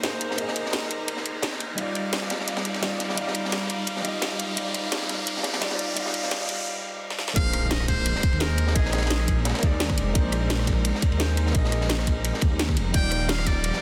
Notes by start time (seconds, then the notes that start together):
Already playing: A#3 D#4 G#4 C5 D5 A#5, riser
0.02 A#3 D#4 G#4 C5, snare, closed hi-hat, ride
0.21 closed hi-hat, ride
0.31 snare
0.35 A#3 D#4, closed hi-hat, ride
0.40 G#4 D#5
0.48 snare
0.56 closed hi-hat, ride
0.66 snare
0.73 snare, closed hi-hat, ride
0.83 snare
0.91 closed hi-hat, ride
1.08 closed hi-hat, ride
1.17 snare
1.26 closed hi-hat, ride
1.42 snare, closed hi-hat, ride
1.53 snare
1.60 closed hi-hat, ride
1.75 G3 D#4 F5 D6, closed hi-hat, ride
1.79 F4 D5
1.95 closed hi-hat, ride
2.13 snare, closed hi-hat, ride
2.22 snare
2.30 snare, closed hi-hat, ride
2.40 snare
2.48 snare, closed hi-hat, ride
2.57 snare, ride
2.65 snare, closed hi-hat
2.74 snare, ride
2.81 G3 D#4 F4 D5, snare, closed hi-hat, ride
2.92 snare
3.00 snare, closed hi-hat, ride
3.09 snare
3.14 G3 D#4, closed hi-hat, ride
3.19 F4 F5
3.27 snare
3.35 closed hi-hat, ride
3.45 snare
3.52 snare, closed hi-hat, ride
3.62 snare
3.70 closed hi-hat, ride
3.87 closed hi-hat, ride
3.96 snare
4.01 G3 D#4, closed hi-hat, ride
4.06 F4 D#5
4.22 snare, closed hi-hat, ride
4.31 snare
4.39 closed hi-hat, ride
4.54 G3 D#4, closed hi-hat, ride
4.58 F4 D5
4.75 closed hi-hat, ride
4.92 snare, closed hi-hat, ride
5.02 snare
5.09 snare, closed hi-hat, ride
5.27 closed hi-hat, ride
5.37 snare
5.43 snare, closed hi-hat, ride
5.54 snare, ride
5.60 G3 D#4 F4 D5, snare, closed hi-hat, ride
5.71 snare, ride
5.79 closed hi-hat
5.93 G3 D#4, closed hi-hat, ride
5.98 F4 F5
6.06 snare
6.14 closed hi-hat, ride
6.24 snare
6.31 snare, closed hi-hat, ride
6.40 snare
6.49 snare, closed hi-hat, ride
7.10 snare
7.19 snare
7.28 snare
7.33 A#1 G#3 A#3 C4 D#4 A#4 F5, kick, closed hi-hat, impact
7.37 G#4 C5, ride
7.53 cross-stick, closed hi-hat, ride
7.71 D#5, snare, closed hi-hat, ride
7.80 cross-stick, snare
7.88 C5, kick, snare, closed hi-hat, ride
8.06 closed hi-hat, ride
8.16 snare
8.23 kick, closed hi-hat, ride
8.33 D#2, ride
8.39 A#3 D#4 G#4 A#4 C5, snare, closed hi-hat, ride
8.58 closed hi-hat, ride
8.67 snare
8.72 A#1 A#3 D#4 G#4, kick, closed hi-hat, ride
8.77 G#4 D#5
8.85 snare
8.92 G#4, cross-stick, snare, closed hi-hat, ride
8.98 snare, ride
9.01 snare, ride
9.06 snare, ride
9.10 snare, closed hi-hat, ride
9.19 cross-stick, snare
9.28 kick, closed hi-hat, ride
9.45 snare, closed hi-hat, ride
9.49 snare, ride
9.54 snare, ride
9.58 A#3 D#4, snare, ride
9.63 D#2 G#4 D5, kick, closed hi-hat, ride
9.80 snare, closed hi-hat, ride
9.88 kick, cross-stick, snare
9.98 F1, closed hi-hat, ride
10.12 A#1 A#3 D#4, kick, closed hi-hat, ride
10.16 G#4 C5
10.32 cross-stick, closed hi-hat, ride
10.50 snare, closed hi-hat, ride
10.59 cross-stick, snare
10.67 kick, snare, closed hi-hat, ride
10.85 closed hi-hat, ride
10.95 snare
11.02 kick, closed hi-hat, ride
11.12 D#2, ride
11.18 A#3 D#4 G#4 C5, snare, closed hi-hat, ride
11.37 closed hi-hat, ride
11.47 snare
11.52 A#1 A#3 D#4, kick, closed hi-hat, ride
11.56 G#4 D#5
11.65 snare
11.72 cross-stick, closed hi-hat, ride
11.81 snare
11.89 snare, closed hi-hat, ride
11.99 cross-stick, snare
12.07 kick, closed hi-hat, ride
12.25 closed hi-hat, ride
12.34 snare
12.41 D#2, kick, closed hi-hat, ride
12.59 snare, closed hi-hat, ride
12.69 kick, cross-stick, snare
12.77 F1, closed hi-hat, ride
12.91 D#1 F3 G3 D#4 G4 G5, kick, closed hi-hat, ride
12.95 F4 D5
13.11 cross-stick, closed hi-hat, ride
13.29 F5, snare, closed hi-hat, ride
13.38 cross-stick, snare
13.47 D5, kick, snare, closed hi-hat, ride
13.64 closed hi-hat, ride
13.73 snare